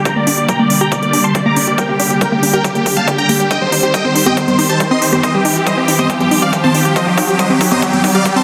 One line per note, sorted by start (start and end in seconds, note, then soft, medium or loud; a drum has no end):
0.00 3.47 D3 medium
0.00 8.44 G3 medium
0.00 3.47 A#3 medium
0.00 8.44 G4 medium
0.00 riser medium
0.05 0.09 G3 medium
0.05 0.15 G5 medium
0.05 0.15 A#5 medium
0.05 kick loud
0.05 closed hi-hat medium
0.16 0.22 A#3 medium
0.16 0.26 D5 medium
0.27 0.33 D4 loud
0.27 0.36 D5 medium
0.27 open hi-hat loud
0.38 0.43 G4 medium
0.38 0.47 D5 medium
0.38 closed hi-hat soft
0.49 0.57 G3 medium
0.49 0.58 G5 medium
0.49 0.58 A#5 medium
0.49 kick loud
0.49 closed hi-hat medium
0.59 0.68 A#3 loud
0.59 0.69 D5 medium
0.70 0.76 D4 medium
0.70 0.80 D5 medium
0.70 open hi-hat loud
0.81 0.87 G4 loud
0.81 0.90 G5 medium
0.81 0.90 A#5 medium
0.81 closed hi-hat soft
0.92 0.95 G3 medium
0.92 1.01 D5 medium
0.92 kick loud
0.92 closed hi-hat medium
1.02 1.08 A#3 medium
1.02 1.12 D5 medium
1.02 closed hi-hat soft
1.13 1.19 D4 loud
1.13 1.23 D5 medium
1.13 open hi-hat loud
1.24 1.30 G4 medium
1.24 1.33 A5 medium
1.24 1.33 C6 medium
1.24 closed hi-hat soft
1.35 1.43 G3 medium
1.35 1.44 D5 medium
1.35 kick loud
1.35 closed hi-hat medium
1.46 1.54 A#3 loud
1.46 1.55 A#5 medium
1.46 1.55 D6 medium
1.56 1.62 D4 medium
1.56 1.66 D5 medium
1.56 open hi-hat loud
1.67 1.73 G4 loud
1.67 1.77 D5 medium
1.67 closed hi-hat medium
1.78 1.81 G3 medium
1.78 1.87 A#4 medium
1.78 1.87 G5 loud
1.78 kick loud
1.78 closed hi-hat medium
1.89 1.94 A#3 medium
1.89 1.98 G4 medium
2.00 2.05 D4 loud
2.00 2.09 G4 medium
2.00 open hi-hat loud
2.10 2.16 G4 medium
2.10 2.20 G4 medium
2.10 closed hi-hat soft
2.21 2.30 G3 medium
2.21 2.31 A#4 medium
2.21 2.31 G5 medium
2.21 kick loud
2.21 closed hi-hat medium
2.32 2.40 A#3 loud
2.32 2.41 G4 medium
2.43 2.48 D4 medium
2.43 2.52 G4 medium
2.43 open hi-hat loud
2.53 2.59 G4 loud
2.53 2.63 A#4 medium
2.53 2.63 G5 medium
2.53 closed hi-hat soft
2.64 2.68 G3 medium
2.64 2.74 G4 medium
2.64 kick loud
2.64 closed hi-hat medium
2.75 2.81 A#3 medium
2.75 2.85 G4 medium
2.75 closed hi-hat soft
2.86 2.92 G3 medium
2.86 2.95 G4 medium
2.86 kick medium
2.86 open hi-hat loud
2.97 3.00 G3 medium
2.97 3.06 F5 medium
2.97 3.06 A5 medium
2.97 closed hi-hat soft
3.07 3.13 D4 loud
3.07 3.17 G4 medium
3.07 kick loud
3.07 closed hi-hat medium
3.18 3.24 D4 medium
3.18 3.28 G5 medium
3.18 3.28 A#5 medium
3.18 closed hi-hat soft
3.29 3.35 A#3 medium
3.29 3.38 G4 medium
3.29 open hi-hat loud
3.40 3.46 G3 medium
3.40 3.49 G4 medium
3.40 closed hi-hat medium
3.51 8.44 D#3 medium
3.51 3.54 G3 medium
3.51 8.44 C4 medium
3.51 3.60 D#5 medium
3.51 3.60 G5 medium
3.51 kick loud
3.51 closed hi-hat medium
3.61 3.65 G3 medium
3.61 3.71 C5 medium
3.72 3.78 D#4 loud
3.72 3.82 C5 medium
3.72 open hi-hat loud
3.83 3.89 G4 medium
3.83 3.92 C5 medium
3.83 closed hi-hat soft
3.94 4.02 G3 medium
3.94 4.03 D#5 medium
3.94 4.03 G5 medium
3.94 kick loud
3.94 closed hi-hat medium
4.05 4.13 C4 loud
4.05 4.14 C5 medium
4.15 4.21 D#4 medium
4.15 4.25 C5 medium
4.15 open hi-hat loud
4.26 4.32 G4 loud
4.26 4.36 D#5 medium
4.26 4.36 G5 medium
4.26 high conga medium
4.37 4.40 G3 medium
4.37 4.46 C5 medium
4.37 kick loud
4.37 closed hi-hat medium
4.48 4.51 G3 medium
4.48 4.57 C5 medium
4.48 closed hi-hat soft
4.48 high conga medium
4.59 4.64 D#4 loud
4.59 4.68 C5 medium
4.59 open hi-hat loud
4.69 4.75 G4 medium
4.69 4.79 C5 medium
4.69 4.79 A5 medium
4.69 closed hi-hat soft
4.80 4.89 G3 medium
4.80 4.90 C5 medium
4.80 kick loud
4.80 closed hi-hat medium
4.91 4.99 C4 loud
4.91 5.00 D#5 medium
4.91 5.00 C6 medium
5.02 5.07 D#4 medium
5.02 5.11 C5 medium
5.02 open hi-hat loud
5.13 5.18 G4 loud
5.13 5.22 C5 medium
5.13 closed hi-hat medium
5.13 high conga medium
5.23 5.27 G3 medium
5.23 5.33 C5 medium
5.23 5.33 D#5 loud
5.23 kick loud
5.23 closed hi-hat medium
5.34 5.38 G3 medium
5.34 5.44 G4 medium
5.45 5.51 D#4 loud
5.45 5.54 G4 medium
5.45 open hi-hat loud
5.56 5.61 G4 medium
5.56 5.65 G4 medium
5.56 closed hi-hat medium
5.66 5.75 G3 medium
5.66 5.76 C5 medium
5.66 5.76 D#5 medium
5.66 kick loud
5.66 closed hi-hat medium
5.77 5.86 C4 loud
5.77 5.87 G4 medium
5.88 5.94 D#4 medium
5.88 5.98 G4 medium
5.88 open hi-hat loud
5.99 6.04 G4 loud
5.99 6.08 C5 medium
5.99 6.08 D#5 medium
5.99 high conga medium
6.09 6.13 G3 medium
6.09 6.19 G4 medium
6.09 kick loud
6.09 closed hi-hat medium
6.20 6.24 G3 medium
6.20 6.30 G4 medium
6.20 closed hi-hat soft
6.20 high conga medium
6.31 6.37 D#4 loud
6.31 6.41 G4 medium
6.31 open hi-hat loud
6.42 6.48 G4 medium
6.42 6.51 D5 medium
6.42 6.51 F5 medium
6.42 closed hi-hat medium
6.53 6.61 G3 medium
6.53 6.62 G4 medium
6.53 kick loud
6.53 closed hi-hat medium
6.64 6.72 C4 loud
6.64 6.73 C5 medium
6.64 6.73 A5 medium
6.64 high conga medium
6.74 6.80 D#4 medium
6.74 6.84 G4 medium
6.74 open hi-hat loud
6.85 6.91 G4 loud
6.85 6.95 G4 medium
6.85 closed hi-hat medium
6.96 6.99 G3 medium
6.96 7.05 C5 medium
6.96 7.05 D#5 medium
6.96 kick loud
6.96 closed hi-hat medium
7.07 7.10 G3 medium
7.07 7.16 G4 medium
7.17 7.23 D#4 loud
7.17 7.27 G4 medium
7.17 kick loud
7.17 open hi-hat loud
7.28 7.34 G4 medium
7.28 7.38 G4 medium
7.28 closed hi-hat medium
7.39 7.48 G3 medium
7.39 7.49 C5 medium
7.39 7.49 D#5 medium
7.39 kick loud
7.39 closed hi-hat medium
7.50 7.58 C4 loud
7.50 7.59 G4 medium
7.61 7.66 D#4 medium
7.61 7.70 G4 medium
7.61 kick loud
7.61 open hi-hat loud
7.71 7.77 G4 loud
7.71 7.81 C5 medium
7.71 7.81 D#5 loud
7.71 closed hi-hat medium
7.71 high conga medium
7.82 7.86 G3 medium
7.82 7.92 G4 medium
7.82 kick loud
7.82 closed hi-hat medium
7.93 7.96 G3 medium
7.93 8.03 G4 medium
7.93 closed hi-hat soft
7.93 high conga medium
8.04 8.10 D#4 loud
8.04 8.13 G4 medium
8.04 kick loud
8.04 open hi-hat loud
8.15 8.20 G4 medium
8.15 8.24 D5 medium
8.15 8.24 F5 medium
8.15 closed hi-hat medium
8.25 8.34 G3 medium
8.25 8.35 G4 medium
8.25 kick loud
8.25 closed hi-hat medium
8.36 8.44 C4 loud
8.36 8.44 C5 medium
8.36 8.44 A5 medium